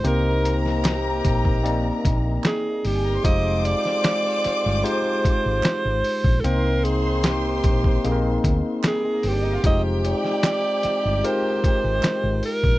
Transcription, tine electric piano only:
X:1
M:4/4
L:1/16
Q:1/4=75
K:Cm
V:1 name="Tine electric piano"
[B,CEGc]6- [B,CEGc] z [B,CEdg]6- [B,CEdg] z | [A,EFGc]6- [A,EFGc] z [A,EFGc]6- [A,EFGc] z | [B,CEcg]6- [B,CEcg] z [B,CEABg]6- [B,CEABg] z | [A,EFGc]6- [A,EFGc] z [A,EFGB]6- [A,EFGB] z |]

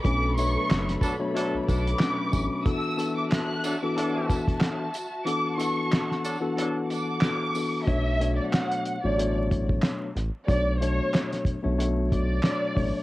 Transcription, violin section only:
X:1
M:4/4
L:1/16
Q:"Swing 16ths" 1/4=92
K:Bm
V:1 name="Violin section"
d'2 c'3 z4 z d'6 | e'3 d' f'3 d'2 z6 z | d'2 c'3 z4 z d'6 | e3 d f3 d2 z6 z |
d2 c3 z4 z d6 |]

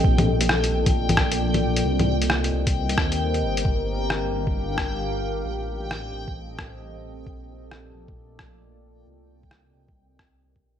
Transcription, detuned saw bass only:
X:1
M:4/4
L:1/8
Q:"Swing 16ths" 1/4=133
K:Bb
V:1 name="Detuned saw bass" clef=bass
B,,,3 B,,,4- B,,, | C,,3 C,,2 E,,2 G,,, | G,,,3 G,,,4- G,,, | A,,,3 A,,,4 A,,, |
B,,,3 B,,,4- B,,, | C,,3 C,,4 B,,, |]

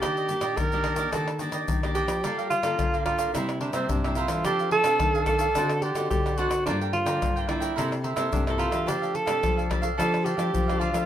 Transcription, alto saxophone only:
X:1
M:4/4
L:1/16
Q:1/4=108
K:F
V:1 name="Alto saxophone"
G4 B4 A2 z4 G2- | G2 F4 F2 E2 D C D2 F2 | G2 A4 A4 G2 G2 ^F2 | D2 F4 E4 z2 D2 F2 |
G2 A4 z2 A2 G4 F2 |]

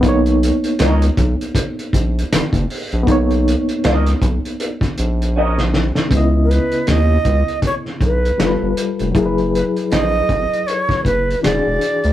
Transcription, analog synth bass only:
X:1
M:4/4
L:1/16
Q:"Swing 16ths" 1/4=79
K:B
V:1 name="Analog synth bass" clef=bass
B,,,3 z C,,2 B,,, z3 A,,,2 F,,, F,,, z A,,, | B,,,3 z C,,2 B,,, z3 A,,,4- A,,, z | C,,3 z D,,2 C,, z3 B,,,2 =G,,, G,,, z =F,,, | F,,,3 z A,,,2 G,,, z3 F,,,2 E,,, E,,, z =D,, |]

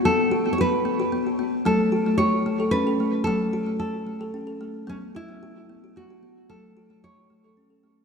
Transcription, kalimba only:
X:1
M:3/4
L:1/16
Q:1/4=112
K:F#m
V:1 name="Kalimba"
B,2 F B, F2 B, F B, F B,2 | A,2 F A, F2 A, A C A A,2 | A,2 F A, F2 A, A C A A,2 | B,2 F B, F2 B, F B, F B,2 |
A,2 F A, F2 A, A C A A,2 |]
V:2 name="Kalimba" clef=bass
z12 | F,12 | F,12 | F,12 |
F,12 |]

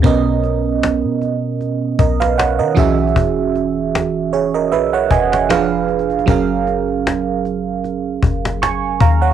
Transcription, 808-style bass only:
X:1
M:4/4
L:1/16
Q:"Swing 16ths" 1/4=77
K:F#
V:1 name="808-style bass" clef=bass
B,,,4- B,,, B,,4- B,, B,,,3 D, B,,,2 | =E,,,8 B,,,2 ^E,,,6 | F,,,8- F,,,2 F,,,3 E,,, D,,2 |]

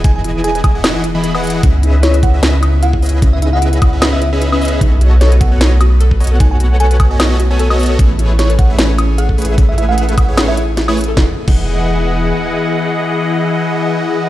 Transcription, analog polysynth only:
X:1
M:4/4
L:1/16
Q:"Swing 16ths" 1/4=151
K:E
V:1 name="Analog polysynth"
[E,EGdg]6- [E,EGdg] [E,EGdf]3 z [E,EGdb]2 [E,EGdf]3 | z6 z [CGBde] [CGBde] z4 z [CGBde] [CGBde]- | [CGBde]6- [CGBde] [CGBde]3 z [CGBde]2 [CGBde]3 | [B,Fcd]6- [B,Fcd] [B,FAcf] [B,FAcd] z4 z [B,FAcd] [B,FAcf]- |
[B,FAcf]6- [B,FAcf] [B,FAcd]3 z [B,FAcg]2 [B,FAcd]3 | [EB]6- [EB] [A,EGBe] [A,EGBc] z4 z [A,EGBc] [A,EGBe]- | [A,EGBe]6- [A,EGBe] [A,EGBc]3 z3 [A,EGBc] z2 | [E,EGdf] z2 [E,EGdf]12- [E,EGdf]- |
[E,EGdf]16 |]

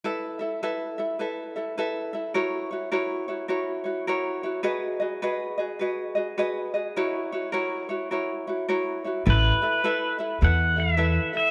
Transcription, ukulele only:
X:1
M:4/4
L:1/8
Q:"Swing" 1/4=104
K:A
V:1 name="Ukulele"
[EABe] [EAe] [EABe] [EAe] [EABe] [EAe] [EABe] [EAe] | [EF^Ac] [EFc] [EFAc] [EFc] [EFAc] [EFc] [EFAc] [EFc] | [FGB^d] [FGd] [FGBd] [FGd] [FGBd] [FGd] [FGBd] [FGd] | [EF^Ac] [EFc] [EFAc] [EFc] [EFAc] [EFc] [EFAc] [EFc] |
[EABe] [EAe] [EABe] [EAe] [EABe] [EAe] [EABe] [EAe] |]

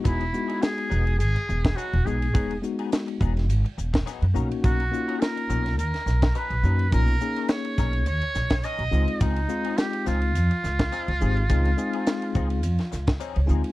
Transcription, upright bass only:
X:1
M:4/4
L:1/16
Q:"Swing 16ths" 1/4=105
K:Db
V:1 name="Upright bass" clef=bass
=E,,,2 z4 E,,,2 ^G,,, z E,,,2 z E,,, =B,,,2 | =E,,,2 z4 E,,,2 ^G,,, z E,,,2 z ^F,, _C,, z | _C,,2 z4 C,,2 E,, z C,,2 z C,, G,,2 | _C,,2 z4 C,,2 E,, z C,,2 z C,, D,, z |
D,,2 z4 D,,2 F,, z D,,2 z D,, A,,,2 | D,,2 z4 D,,2 F,, z D,,2 z D,, =D,, z |]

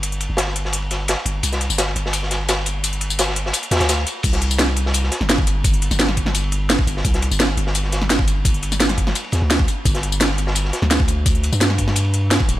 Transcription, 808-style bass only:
X:1
M:4/4
L:1/16
Q:1/4=171
K:Clyd
V:1 name="808-style bass" clef=bass
G,,,3 G,,,8- G,,,2 z G,,,2 | C,,3 G,,,3 G,,,8- G,,,2- | G,,,8 z2 E,, D,,3 z2 | C,,8- C,,2 z G,,,4- G,,,- |
G,,,3 G,,,8- G,,,2 z G,,,2 | C,,3 G,,,3 G,,,8- G,,,2- | G,,,8 z2 E,, D,,3 z2 | G,,,8- G,,,2 z D,,4- D,,- |
D,,3 G,,8- G,,2 z D,,,2 |]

